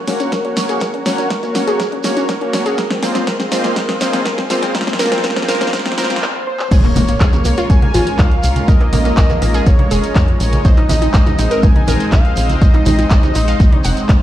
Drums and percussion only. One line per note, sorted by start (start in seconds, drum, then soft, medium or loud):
0.08 snare medium
0.08 open hi-hat loud
0.08 shekere loud
0.19 closed hi-hat medium
0.19 shekere soft
0.32 kick loud
0.32 snare medium
0.32 closed hi-hat soft
0.32 shekere medium
0.45 closed hi-hat soft
0.57 snare medium
0.57 open hi-hat loud
0.57 shekere medium
0.69 closed hi-hat soft
0.69 shekere soft
0.80 kick loud
0.80 snare medium
0.80 closed hi-hat medium
0.80 shekere medium
0.94 closed hi-hat soft
1.06 snare medium
1.06 open hi-hat loud
1.06 shekere medium
1.18 closed hi-hat medium
1.18 shekere soft
1.30 kick loud
1.30 snare medium
1.30 closed hi-hat medium
1.30 shekere medium
1.43 closed hi-hat soft
1.43 shekere soft
1.55 snare medium
1.55 open hi-hat loud
1.55 shekere medium
1.68 closed hi-hat medium
1.68 shekere soft
1.80 kick loud
1.80 snare medium
1.80 closed hi-hat medium
1.80 shekere medium
1.92 closed hi-hat soft
2.04 snare medium
2.04 open hi-hat loud
2.04 shekere loud
2.17 closed hi-hat soft
2.17 shekere soft
2.29 kick loud
2.29 snare medium
2.29 closed hi-hat medium
2.29 shekere soft
2.41 closed hi-hat soft
2.53 snare medium
2.53 open hi-hat loud
2.53 shekere medium
2.66 closed hi-hat soft
2.66 shekere soft
2.78 kick loud
2.78 snare medium
2.78 closed hi-hat medium
2.78 shekere medium
2.90 snare medium
2.90 closed hi-hat soft
3.03 snare medium
3.03 open hi-hat loud
3.03 shekere medium
3.15 snare medium
3.15 closed hi-hat medium
3.15 shekere soft
3.27 kick loud
3.27 snare medium
3.27 closed hi-hat medium
3.27 shekere soft
3.40 snare medium
3.40 closed hi-hat soft
3.40 shekere soft
3.52 snare loud
3.52 open hi-hat loud
3.52 shekere medium
3.64 snare medium
3.64 closed hi-hat medium
3.64 shekere soft
3.76 kick loud
3.76 snare loud
3.76 closed hi-hat medium
3.76 shekere medium
3.89 snare medium
3.89 closed hi-hat soft
4.01 snare loud
4.01 open hi-hat loud
4.01 shekere medium
4.13 snare medium
4.13 closed hi-hat medium
4.13 shekere soft
4.25 kick loud
4.25 snare loud
4.25 closed hi-hat medium
4.25 shekere medium
4.38 snare medium
4.38 closed hi-hat soft
4.50 snare loud
4.50 open hi-hat loud
4.50 shekere medium
4.63 snare medium
4.63 closed hi-hat medium
4.63 shekere soft
4.74 kick loud
4.74 snare loud
4.74 closed hi-hat medium
4.74 shekere soft
4.81 snare medium
4.87 snare medium
4.87 closed hi-hat soft
4.87 shekere soft
4.93 snare medium
4.99 snare loud
4.99 open hi-hat loud
4.99 shekere medium
5.06 snare medium
5.12 snare medium
5.12 closed hi-hat medium
5.12 shekere soft
5.18 snare medium
5.23 kick loud
5.23 snare loud
5.23 closed hi-hat medium
5.23 shekere medium
5.30 snare medium
5.36 snare medium
5.36 closed hi-hat soft
5.36 shekere soft
5.42 snare medium
5.48 snare loud
5.48 open hi-hat loud
5.48 shekere medium
5.55 snare medium
5.61 snare medium
5.61 closed hi-hat medium
5.61 shekere soft
5.67 snare loud
5.73 kick loud
5.73 snare loud
5.73 closed hi-hat medium
5.73 shekere medium
5.79 snare medium
5.85 snare medium
5.85 closed hi-hat soft
5.85 shekere soft
5.92 snare medium
5.98 snare loud
5.98 open hi-hat loud
5.98 shekere medium
6.04 snare loud
6.10 snare medium
6.10 closed hi-hat medium
6.10 shekere soft
6.16 snare medium
6.22 clap loud
6.59 clap medium
6.71 kick loud
6.71 closed hi-hat medium
6.71 crash loud
6.71 shekere medium
6.84 clap soft
6.84 closed hi-hat soft
6.96 open hi-hat loud
6.96 high conga loud
6.96 low conga medium
6.96 shekere loud
7.07 closed hi-hat medium
7.07 shekere soft
7.20 kick loud
7.20 clap loud
7.20 closed hi-hat medium
7.20 shekere soft
7.33 closed hi-hat soft
7.33 high conga medium
7.33 low conga medium
7.33 shekere soft
7.45 open hi-hat loud
7.45 shekere loud
7.58 closed hi-hat medium
7.58 shekere soft
7.70 kick loud
7.70 closed hi-hat medium
7.70 shekere medium
7.82 closed hi-hat soft
7.82 high conga medium
7.94 open hi-hat loud
7.94 low conga medium
7.94 shekere loud
8.06 closed hi-hat medium
8.06 shekere soft
8.19 kick loud
8.19 clap loud
8.19 closed hi-hat medium
8.19 high conga medium
8.19 shekere medium
8.31 closed hi-hat soft
8.43 open hi-hat loud
8.43 shekere loud
8.56 closed hi-hat medium
8.56 high conga medium
8.56 shekere soft
8.68 kick loud
8.68 closed hi-hat medium
8.68 shekere medium
8.80 clap soft
8.80 closed hi-hat soft
8.93 open hi-hat loud
8.93 high conga loud
8.93 shekere loud
9.05 closed hi-hat medium
9.05 shekere soft
9.17 kick loud
9.17 clap loud
9.17 closed hi-hat medium
9.17 shekere medium
9.29 closed hi-hat soft
9.29 high conga medium
9.29 low conga medium
9.29 shekere soft
9.42 open hi-hat loud
9.42 shekere medium
9.54 closed hi-hat medium
9.54 shekere soft
9.66 kick loud
9.66 closed hi-hat medium
9.66 shekere medium
9.79 closed hi-hat soft
9.79 high conga loud
9.91 open hi-hat loud
9.91 shekere medium
10.04 closed hi-hat medium
10.04 shekere soft
10.15 kick loud
10.15 clap loud
10.15 closed hi-hat medium
10.15 high conga medium
10.15 shekere medium
10.28 closed hi-hat soft
10.40 open hi-hat loud
10.40 shekere medium
10.52 closed hi-hat medium
10.52 high conga medium
10.52 shekere soft
10.65 kick loud
10.65 closed hi-hat medium
10.65 shekere medium
10.77 clap soft
10.77 closed hi-hat soft
10.89 open hi-hat loud
10.89 high conga medium
10.89 low conga medium
10.89 shekere loud
11.01 closed hi-hat medium
11.01 shekere soft
11.14 kick loud
11.14 clap loud
11.14 closed hi-hat medium
11.14 shekere medium
11.26 closed hi-hat soft
11.26 high conga medium
11.26 low conga medium
11.26 shekere soft
11.39 open hi-hat loud
11.39 shekere medium
11.51 closed hi-hat medium
11.51 shekere soft
11.63 kick loud
11.63 closed hi-hat soft
11.63 shekere medium
11.76 closed hi-hat soft
11.76 high conga medium
11.87 open hi-hat loud
11.87 low conga medium
11.87 shekere medium
12.00 closed hi-hat medium
12.00 shekere soft
12.12 kick loud
12.12 clap loud
12.12 closed hi-hat medium
12.12 high conga medium
12.12 shekere medium
12.25 closed hi-hat soft
12.37 open hi-hat loud
12.37 shekere loud
12.49 closed hi-hat medium
12.49 high conga medium
12.49 shekere soft
12.62 kick loud
12.62 closed hi-hat soft
12.62 shekere medium
12.74 clap soft
12.74 closed hi-hat soft
12.86 open hi-hat loud
12.86 high conga loud
12.86 low conga medium
12.86 shekere loud
12.99 closed hi-hat medium
12.99 shekere soft
13.10 kick loud
13.10 clap loud
13.10 closed hi-hat soft
13.10 shekere medium
13.23 closed hi-hat soft
13.23 high conga medium
13.23 low conga medium
13.23 shekere soft
13.35 open hi-hat loud
13.35 shekere medium
13.48 closed hi-hat medium
13.48 shekere soft
13.60 kick loud
13.60 closed hi-hat medium
13.60 shekere medium
13.72 closed hi-hat soft
13.72 high conga medium
13.84 open hi-hat loud
13.84 shekere medium
13.97 closed hi-hat medium
13.97 shekere soft
14.09 kick loud
14.09 clap loud
14.09 closed hi-hat medium
14.09 high conga medium
14.09 shekere medium